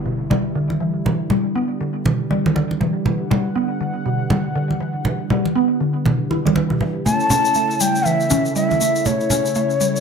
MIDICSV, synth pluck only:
0, 0, Header, 1, 2, 480
1, 0, Start_track
1, 0, Tempo, 500000
1, 1014, Time_signature, 4, 2, 24, 8
1, 9601, End_track
2, 0, Start_track
2, 0, Title_t, "Synth pluck"
2, 0, Program_c, 0, 84
2, 55, Note_on_c, 0, 47, 81
2, 184, Note_off_c, 0, 47, 0
2, 291, Note_on_c, 0, 55, 102
2, 422, Note_off_c, 0, 55, 0
2, 532, Note_on_c, 0, 50, 94
2, 662, Note_off_c, 0, 50, 0
2, 772, Note_on_c, 0, 52, 75
2, 902, Note_off_c, 0, 52, 0
2, 1014, Note_on_c, 0, 52, 80
2, 1150, Note_off_c, 0, 52, 0
2, 1253, Note_on_c, 0, 55, 95
2, 1383, Note_off_c, 0, 55, 0
2, 1493, Note_on_c, 0, 59, 98
2, 1571, Note_off_c, 0, 59, 0
2, 1734, Note_on_c, 0, 50, 75
2, 1863, Note_off_c, 0, 50, 0
2, 1974, Note_on_c, 0, 47, 78
2, 2103, Note_off_c, 0, 47, 0
2, 2214, Note_on_c, 0, 55, 103
2, 2343, Note_off_c, 0, 55, 0
2, 2454, Note_on_c, 0, 50, 96
2, 2583, Note_off_c, 0, 50, 0
2, 2693, Note_on_c, 0, 52, 75
2, 2823, Note_off_c, 0, 52, 0
2, 2934, Note_on_c, 0, 52, 77
2, 3070, Note_off_c, 0, 52, 0
2, 3174, Note_on_c, 0, 55, 94
2, 3303, Note_off_c, 0, 55, 0
2, 3413, Note_on_c, 0, 59, 99
2, 3491, Note_off_c, 0, 59, 0
2, 3654, Note_on_c, 0, 50, 74
2, 3783, Note_off_c, 0, 50, 0
2, 3894, Note_on_c, 0, 47, 80
2, 4023, Note_off_c, 0, 47, 0
2, 4133, Note_on_c, 0, 55, 101
2, 4263, Note_off_c, 0, 55, 0
2, 4373, Note_on_c, 0, 50, 99
2, 4503, Note_off_c, 0, 50, 0
2, 4613, Note_on_c, 0, 52, 75
2, 4742, Note_off_c, 0, 52, 0
2, 4853, Note_on_c, 0, 52, 82
2, 4990, Note_off_c, 0, 52, 0
2, 5093, Note_on_c, 0, 55, 99
2, 5222, Note_off_c, 0, 55, 0
2, 5333, Note_on_c, 0, 59, 99
2, 5411, Note_off_c, 0, 59, 0
2, 5573, Note_on_c, 0, 50, 76
2, 5703, Note_off_c, 0, 50, 0
2, 5814, Note_on_c, 0, 47, 77
2, 5943, Note_off_c, 0, 47, 0
2, 6054, Note_on_c, 0, 64, 77
2, 6183, Note_off_c, 0, 64, 0
2, 6197, Note_on_c, 0, 55, 99
2, 6284, Note_off_c, 0, 55, 0
2, 6294, Note_on_c, 0, 52, 95
2, 6430, Note_off_c, 0, 52, 0
2, 6439, Note_on_c, 0, 47, 78
2, 6530, Note_off_c, 0, 47, 0
2, 6536, Note_on_c, 0, 52, 94
2, 6671, Note_off_c, 0, 52, 0
2, 6775, Note_on_c, 0, 57, 81
2, 6911, Note_off_c, 0, 57, 0
2, 7014, Note_on_c, 0, 61, 103
2, 7143, Note_off_c, 0, 61, 0
2, 7253, Note_on_c, 0, 57, 81
2, 7383, Note_off_c, 0, 57, 0
2, 7494, Note_on_c, 0, 55, 73
2, 7623, Note_off_c, 0, 55, 0
2, 7734, Note_on_c, 0, 52, 82
2, 7863, Note_off_c, 0, 52, 0
2, 7974, Note_on_c, 0, 61, 108
2, 8103, Note_off_c, 0, 61, 0
2, 8214, Note_on_c, 0, 55, 99
2, 8343, Note_off_c, 0, 55, 0
2, 8456, Note_on_c, 0, 57, 75
2, 8584, Note_off_c, 0, 57, 0
2, 8695, Note_on_c, 0, 57, 84
2, 8831, Note_off_c, 0, 57, 0
2, 8934, Note_on_c, 0, 61, 94
2, 9063, Note_off_c, 0, 61, 0
2, 9175, Note_on_c, 0, 57, 81
2, 9304, Note_off_c, 0, 57, 0
2, 9414, Note_on_c, 0, 55, 76
2, 9543, Note_off_c, 0, 55, 0
2, 9601, End_track
0, 0, End_of_file